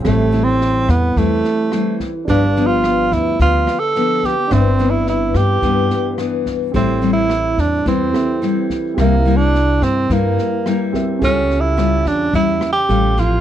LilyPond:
<<
  \new Staff \with { instrumentName = "Grand piano" } { \time 4/4 \key c \major \tempo 4 = 108 <c' g' a' e''>1 | <d' g' b' f''>1 | <c' d' b' e''>1 | <c' g' a' e''>2~ <c' g' a' e''>8 <c' g' a' e''>4. |
<c' g' bes' e''>2.~ <c' g' bes' e''>8 <c' g' bes' e''>8 | <cis' g' a' f'''>2. <g' a' f''>4 | }
  \new Staff \with { instrumentName = "Tenor saxophone" } { \time 4/4 \key c \major \tuplet 3/2 { a4 c'8~ } c'8 b8 a4. r8 | \tuplet 3/2 { d'4 f'8~ } f'8 e'8 \tuplet 3/2 { f'4 a'8~ } a'8 g'8 | \tuplet 3/2 { c'4 e'8 } e'8 g'4. r4 | \tuplet 3/2 { c'4 e'8~ } e'8 d'8 c'4. r8 |
\tuplet 3/2 { bes4 d'8~ } d'8 c'8 bes4. r8 | \tuplet 3/2 { cis'4 e'8~ } e'8 d'8 \tuplet 3/2 { e'4 g'8~ } g'8 f'8 | }
  \new Staff \with { instrumentName = "Nylon-string guitar" } { \time 4/4 \key c \major << { <g c' e'>8 <g c' e'>4. <g c' e'>4 <g c' e'>8 r8 | <f b d'>8 <f b d'>4. <f b d'>8 r8 <f b d'>8 r8 | <e b d'>8 <e b d'>4. <e b d'>4 <e b d'>4 | <g c' e'>8 <g c' e'>4. <g c' e'>4 <g c' e'>4 |
<g bes e'>8 <g bes e'>4. <g bes e'>8 r8 <g bes e'>4 | <g cis' f'>4 <g cis' f'>4 <g cis'>8 r8 <g cis' f'>8 <f c' e'>8 | } \\ { a,2 e2 | g,2 d2 | g,2 g,2 | a,2 e2 |
c2 g,2 | cis2 cis4 r4 | } >> }
  \new Staff \with { instrumentName = "Upright bass" } { \clef bass \time 4/4 \key c \major a,,4. e,8 e,8 r4. | g,,4. d,8 d,8 r4. | g,,4. g,8 g,8 r4. | a,,4. e,8 e,8 r4. |
c,4. g,8 g,8 r4. | cis,4. e,8 e,8 r8 a,,4 | }
  \new DrumStaff \with { instrumentName = "Drums" } \drummode { \time 4/4 <bd ss sn>8 sn8 sn8 <bd ss sn>8 <bd sn>8 sn8 <ss sn>8 <bd sn>8 | <bd sn>8 sn8 <ss sn>8 <bd sn>8 <bd sn>8 <ss sn>8 sn8 <bd sn>8 | <bd ss sn>8 sn8 sn8 <bd ss sn>8 <bd sn>8 sn8 <ss sn>8 <bd sn>8 | <bd sn>8 sn8 <ss sn>8 <bd sn>8 <bd sn>8 <ss sn>8 sn8 <bd sn>8 |
<bd ss sn>8 sn8 sn8 <bd ss sn>8 <bd sn>8 sn8 <ss sn>8 <bd sn>8 | <bd sn>8 sn8 <ss sn>8 <bd sn>8 <bd sn>8 <ss sn>8 sn8 <bd sn>8 | }
>>